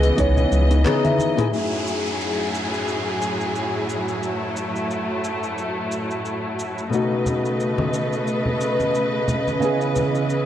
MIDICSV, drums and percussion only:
0, 0, Header, 1, 2, 480
1, 0, Start_track
1, 0, Tempo, 674157
1, 1089, Time_signature, 4, 2, 24, 8
1, 7445, End_track
2, 0, Start_track
2, 0, Title_t, "Drums"
2, 24, Note_on_c, 9, 46, 43
2, 27, Note_on_c, 9, 82, 30
2, 95, Note_off_c, 9, 46, 0
2, 98, Note_off_c, 9, 82, 0
2, 128, Note_on_c, 9, 36, 100
2, 129, Note_on_c, 9, 46, 54
2, 132, Note_on_c, 9, 82, 43
2, 199, Note_off_c, 9, 36, 0
2, 200, Note_off_c, 9, 46, 0
2, 203, Note_off_c, 9, 82, 0
2, 264, Note_on_c, 9, 64, 78
2, 267, Note_on_c, 9, 82, 29
2, 336, Note_off_c, 9, 64, 0
2, 338, Note_off_c, 9, 82, 0
2, 368, Note_on_c, 9, 48, 58
2, 371, Note_on_c, 9, 82, 78
2, 439, Note_off_c, 9, 48, 0
2, 442, Note_off_c, 9, 82, 0
2, 504, Note_on_c, 9, 46, 43
2, 507, Note_on_c, 9, 82, 27
2, 576, Note_off_c, 9, 46, 0
2, 579, Note_off_c, 9, 82, 0
2, 610, Note_on_c, 9, 39, 98
2, 610, Note_on_c, 9, 46, 54
2, 610, Note_on_c, 9, 47, 74
2, 613, Note_on_c, 9, 82, 44
2, 682, Note_off_c, 9, 39, 0
2, 682, Note_off_c, 9, 46, 0
2, 682, Note_off_c, 9, 47, 0
2, 685, Note_off_c, 9, 82, 0
2, 745, Note_on_c, 9, 46, 30
2, 745, Note_on_c, 9, 47, 68
2, 748, Note_on_c, 9, 82, 27
2, 750, Note_on_c, 9, 63, 55
2, 816, Note_off_c, 9, 46, 0
2, 816, Note_off_c, 9, 47, 0
2, 819, Note_off_c, 9, 82, 0
2, 821, Note_off_c, 9, 63, 0
2, 843, Note_on_c, 9, 63, 58
2, 854, Note_on_c, 9, 82, 75
2, 914, Note_off_c, 9, 63, 0
2, 925, Note_off_c, 9, 82, 0
2, 986, Note_on_c, 9, 45, 80
2, 986, Note_on_c, 9, 46, 43
2, 989, Note_on_c, 9, 82, 31
2, 1057, Note_off_c, 9, 45, 0
2, 1057, Note_off_c, 9, 46, 0
2, 1060, Note_off_c, 9, 82, 0
2, 1093, Note_on_c, 9, 82, 34
2, 1164, Note_off_c, 9, 82, 0
2, 1334, Note_on_c, 9, 82, 67
2, 1405, Note_off_c, 9, 82, 0
2, 1469, Note_on_c, 9, 82, 29
2, 1540, Note_off_c, 9, 82, 0
2, 1574, Note_on_c, 9, 82, 38
2, 1645, Note_off_c, 9, 82, 0
2, 1813, Note_on_c, 9, 82, 64
2, 1884, Note_off_c, 9, 82, 0
2, 1948, Note_on_c, 9, 82, 28
2, 2019, Note_off_c, 9, 82, 0
2, 2052, Note_on_c, 9, 82, 37
2, 2123, Note_off_c, 9, 82, 0
2, 2292, Note_on_c, 9, 82, 68
2, 2363, Note_off_c, 9, 82, 0
2, 2427, Note_on_c, 9, 82, 25
2, 2498, Note_off_c, 9, 82, 0
2, 2533, Note_on_c, 9, 82, 39
2, 2604, Note_off_c, 9, 82, 0
2, 2773, Note_on_c, 9, 82, 70
2, 2844, Note_off_c, 9, 82, 0
2, 2908, Note_on_c, 9, 82, 27
2, 2979, Note_off_c, 9, 82, 0
2, 3012, Note_on_c, 9, 82, 39
2, 3083, Note_off_c, 9, 82, 0
2, 3251, Note_on_c, 9, 82, 70
2, 3322, Note_off_c, 9, 82, 0
2, 3388, Note_on_c, 9, 82, 29
2, 3460, Note_off_c, 9, 82, 0
2, 3494, Note_on_c, 9, 82, 42
2, 3565, Note_off_c, 9, 82, 0
2, 3733, Note_on_c, 9, 82, 74
2, 3805, Note_off_c, 9, 82, 0
2, 3869, Note_on_c, 9, 82, 31
2, 3940, Note_off_c, 9, 82, 0
2, 3973, Note_on_c, 9, 82, 39
2, 4045, Note_off_c, 9, 82, 0
2, 4213, Note_on_c, 9, 82, 68
2, 4284, Note_off_c, 9, 82, 0
2, 4349, Note_on_c, 9, 82, 26
2, 4420, Note_off_c, 9, 82, 0
2, 4453, Note_on_c, 9, 82, 41
2, 4524, Note_off_c, 9, 82, 0
2, 4695, Note_on_c, 9, 82, 69
2, 4766, Note_off_c, 9, 82, 0
2, 4829, Note_on_c, 9, 82, 28
2, 4900, Note_off_c, 9, 82, 0
2, 4934, Note_on_c, 9, 82, 42
2, 5005, Note_off_c, 9, 82, 0
2, 5171, Note_on_c, 9, 64, 68
2, 5172, Note_on_c, 9, 82, 67
2, 5242, Note_off_c, 9, 64, 0
2, 5243, Note_off_c, 9, 82, 0
2, 5307, Note_on_c, 9, 82, 30
2, 5379, Note_off_c, 9, 82, 0
2, 5413, Note_on_c, 9, 82, 40
2, 5484, Note_off_c, 9, 82, 0
2, 5541, Note_on_c, 9, 63, 91
2, 5613, Note_off_c, 9, 63, 0
2, 5651, Note_on_c, 9, 82, 75
2, 5722, Note_off_c, 9, 82, 0
2, 5787, Note_on_c, 9, 82, 28
2, 5858, Note_off_c, 9, 82, 0
2, 5891, Note_on_c, 9, 82, 41
2, 5962, Note_off_c, 9, 82, 0
2, 6021, Note_on_c, 9, 64, 72
2, 6092, Note_off_c, 9, 64, 0
2, 6130, Note_on_c, 9, 82, 70
2, 6201, Note_off_c, 9, 82, 0
2, 6264, Note_on_c, 9, 63, 54
2, 6266, Note_on_c, 9, 82, 28
2, 6335, Note_off_c, 9, 63, 0
2, 6337, Note_off_c, 9, 82, 0
2, 6371, Note_on_c, 9, 82, 43
2, 6442, Note_off_c, 9, 82, 0
2, 6606, Note_on_c, 9, 64, 85
2, 6611, Note_on_c, 9, 82, 74
2, 6677, Note_off_c, 9, 64, 0
2, 6682, Note_off_c, 9, 82, 0
2, 6744, Note_on_c, 9, 63, 58
2, 6747, Note_on_c, 9, 82, 29
2, 6815, Note_off_c, 9, 63, 0
2, 6818, Note_off_c, 9, 82, 0
2, 6851, Note_on_c, 9, 82, 39
2, 6922, Note_off_c, 9, 82, 0
2, 6986, Note_on_c, 9, 82, 29
2, 7057, Note_off_c, 9, 82, 0
2, 7090, Note_on_c, 9, 82, 71
2, 7092, Note_on_c, 9, 64, 62
2, 7095, Note_on_c, 9, 63, 50
2, 7161, Note_off_c, 9, 82, 0
2, 7163, Note_off_c, 9, 64, 0
2, 7166, Note_off_c, 9, 63, 0
2, 7226, Note_on_c, 9, 82, 29
2, 7298, Note_off_c, 9, 82, 0
2, 7332, Note_on_c, 9, 82, 44
2, 7403, Note_off_c, 9, 82, 0
2, 7445, End_track
0, 0, End_of_file